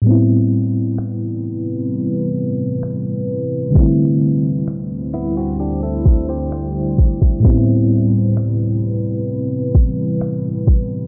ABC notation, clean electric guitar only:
X:1
M:4/4
L:1/16
Q:1/4=65
K:Am
V:1 name="Clean electric guitar"
z16 | z6 [B,E] [C^F] [DG] [EA]2 [Gc]4- [Gc] | z16 |]